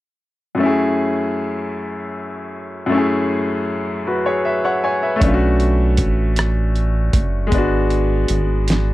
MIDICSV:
0, 0, Header, 1, 4, 480
1, 0, Start_track
1, 0, Key_signature, 3, "minor"
1, 0, Tempo, 769231
1, 376, Time_signature, 6, 3, 24, 8
1, 5577, End_track
2, 0, Start_track
2, 0, Title_t, "Grand piano"
2, 0, Program_c, 0, 0
2, 342, Note_on_c, 0, 42, 53
2, 358, Note_on_c, 0, 57, 49
2, 377, Note_on_c, 0, 61, 51
2, 393, Note_on_c, 0, 64, 51
2, 412, Note_on_c, 0, 68, 65
2, 478, Control_c, 0, 64, 127
2, 1774, Note_off_c, 0, 42, 0
2, 1782, Note_off_c, 0, 57, 0
2, 1786, Note_on_c, 0, 42, 60
2, 1791, Note_off_c, 0, 61, 0
2, 1799, Note_off_c, 0, 64, 0
2, 1804, Note_on_c, 0, 57, 51
2, 1809, Note_off_c, 0, 68, 0
2, 1822, Note_on_c, 0, 61, 53
2, 1838, Note_on_c, 0, 64, 51
2, 1856, Note_on_c, 0, 68, 64
2, 2539, Note_on_c, 0, 71, 46
2, 2542, Note_off_c, 0, 68, 0
2, 2543, Note_on_c, 0, 66, 42
2, 2651, Note_off_c, 0, 71, 0
2, 2653, Note_off_c, 0, 66, 0
2, 2658, Note_on_c, 0, 73, 54
2, 2662, Note_on_c, 0, 68, 44
2, 2771, Note_off_c, 0, 73, 0
2, 2773, Note_off_c, 0, 68, 0
2, 2776, Note_on_c, 0, 76, 49
2, 2780, Note_on_c, 0, 71, 46
2, 2890, Note_off_c, 0, 76, 0
2, 2892, Note_off_c, 0, 71, 0
2, 2899, Note_on_c, 0, 78, 57
2, 2901, Note_on_c, 0, 73, 44
2, 3011, Note_off_c, 0, 78, 0
2, 3012, Note_off_c, 0, 73, 0
2, 3018, Note_on_c, 0, 80, 54
2, 3022, Note_on_c, 0, 73, 42
2, 3131, Note_off_c, 0, 80, 0
2, 3133, Note_off_c, 0, 73, 0
2, 3136, Note_on_c, 0, 76, 47
2, 3139, Note_on_c, 0, 71, 43
2, 3210, Note_off_c, 0, 57, 0
2, 3216, Note_off_c, 0, 42, 0
2, 3219, Note_on_c, 0, 57, 63
2, 3234, Note_off_c, 0, 61, 0
2, 3242, Note_off_c, 0, 64, 0
2, 3244, Note_on_c, 0, 61, 56
2, 3264, Control_c, 0, 64, 0
2, 3266, Note_on_c, 0, 62, 53
2, 3289, Note_on_c, 0, 65, 51
2, 3313, Note_off_c, 0, 65, 0
2, 3330, Note_on_c, 0, 66, 66
2, 3358, Control_c, 0, 64, 127
2, 3364, Note_off_c, 0, 76, 0
2, 3365, Note_off_c, 0, 71, 0
2, 4652, Note_off_c, 0, 57, 0
2, 4660, Note_on_c, 0, 56, 61
2, 4665, Note_off_c, 0, 61, 0
2, 4676, Note_off_c, 0, 62, 0
2, 4684, Note_on_c, 0, 59, 53
2, 4704, Control_c, 0, 64, 0
2, 4707, Note_on_c, 0, 62, 54
2, 4708, Note_off_c, 0, 66, 0
2, 4730, Note_on_c, 0, 66, 66
2, 4814, Control_c, 0, 64, 127
2, 5577, Note_off_c, 0, 56, 0
2, 5577, Note_off_c, 0, 59, 0
2, 5577, Note_off_c, 0, 62, 0
2, 5577, Note_off_c, 0, 66, 0
2, 5577, End_track
3, 0, Start_track
3, 0, Title_t, "Analog synth bass"
3, 0, Program_c, 1, 38
3, 3258, Note_on_c, 1, 35, 98
3, 3739, Note_on_c, 1, 33, 84
3, 3748, Note_off_c, 1, 35, 0
3, 4432, Note_off_c, 1, 33, 0
3, 4457, Note_on_c, 1, 30, 73
3, 4697, Note_on_c, 1, 32, 95
3, 4706, Note_off_c, 1, 30, 0
3, 5151, Note_off_c, 1, 32, 0
3, 5180, Note_on_c, 1, 32, 94
3, 5577, Note_off_c, 1, 32, 0
3, 5577, End_track
4, 0, Start_track
4, 0, Title_t, "Drums"
4, 3254, Note_on_c, 9, 36, 82
4, 3254, Note_on_c, 9, 42, 54
4, 3316, Note_off_c, 9, 36, 0
4, 3317, Note_off_c, 9, 42, 0
4, 3493, Note_on_c, 9, 42, 44
4, 3555, Note_off_c, 9, 42, 0
4, 3728, Note_on_c, 9, 42, 53
4, 3734, Note_on_c, 9, 36, 61
4, 3790, Note_off_c, 9, 42, 0
4, 3796, Note_off_c, 9, 36, 0
4, 3971, Note_on_c, 9, 42, 59
4, 3987, Note_on_c, 9, 37, 93
4, 4033, Note_off_c, 9, 42, 0
4, 4049, Note_off_c, 9, 37, 0
4, 4215, Note_on_c, 9, 42, 31
4, 4278, Note_off_c, 9, 42, 0
4, 4451, Note_on_c, 9, 42, 63
4, 4452, Note_on_c, 9, 36, 74
4, 4513, Note_off_c, 9, 42, 0
4, 4514, Note_off_c, 9, 36, 0
4, 4691, Note_on_c, 9, 42, 52
4, 4693, Note_on_c, 9, 36, 86
4, 4754, Note_off_c, 9, 42, 0
4, 4755, Note_off_c, 9, 36, 0
4, 4932, Note_on_c, 9, 42, 43
4, 4995, Note_off_c, 9, 42, 0
4, 5169, Note_on_c, 9, 42, 57
4, 5231, Note_off_c, 9, 42, 0
4, 5414, Note_on_c, 9, 42, 58
4, 5429, Note_on_c, 9, 38, 41
4, 5477, Note_off_c, 9, 42, 0
4, 5492, Note_off_c, 9, 38, 0
4, 5577, End_track
0, 0, End_of_file